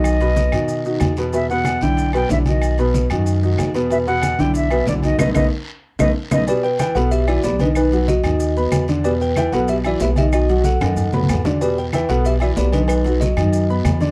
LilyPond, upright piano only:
\new Staff \with { instrumentName = "Upright piano" } { \time 4/4 \key e \minor \tempo 4 = 187 <dis dis' fis'>8 <b, b b'>4 <dis dis' fis'>4 <dis dis' fis'>4 <b, b b'>8 | <b, b b'>8 <b, b b'>4 <d d' e'>4 <b, b b'>8 <d d' e'>8 <dis dis' fis'>8~ | <dis dis' fis'>8 <b, b b'>4 <dis dis' fis'>4 <dis dis' fis'>4 <b, b b'>8 | <b, b b'>8 <b, b b'>4 <d d' e'>4 <b, b b'>8 <d d' e'>8 <dis dis' fis'>8 |
<a b dis'>8 <a b dis'>8 r4. <a b dis'>8 r8 <a b dis'>8 | <b, b b'>4 <e e' e''>8 <b, b b'>4 <e e' e''>8 <b b' b''>8 <dis dis' dis''>8~ | <dis dis' dis''>8 <fis fis' fis''>4 <dis dis' dis''>4 <b b' b''>4 <d d' d''>8 | <b, b b'>4 <e e' e''>8 <b, b b'>4 <e e' e''>8 <b b' b''>8 <dis dis' dis''>8~ |
<dis dis' dis''>8 <fis fis' fis''>4 <dis dis' dis''>4 <b b' b''>4 <d d' d''>8 | <b, b b'>4 <e e' e''>8 <b, b b'>4 <e e' e''>8 <b b' b''>8 <dis dis' dis''>8~ | <dis dis' dis''>8 <fis fis' fis''>4 <dis dis' dis''>4 <b b' b''>4 <d d' d''>8 | }